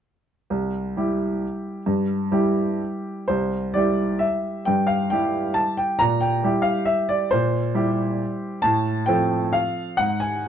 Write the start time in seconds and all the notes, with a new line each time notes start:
0.50 C2
0.97 G3 E4 G4
1.86 G2
2.32 G3 E4 G4
3.28 C2 C5
3.74 G3 E4 G4 D5
4.19 E5
4.65 G2 G5
4.87 F5
5.10 G3 E4 G4 G5
5.54 A5
5.77 G5
5.99 A#2 A#5
6.21 G5
6.44 G3 E4 G4
6.62 F5
6.86 E5
7.09 D5
7.31 A#2 C5
7.74 G3 E4 G4
8.62 A2 A5
9.06 F3 C4 A4 G5
9.53 F5
9.97 G#2 F#5
10.20 G#5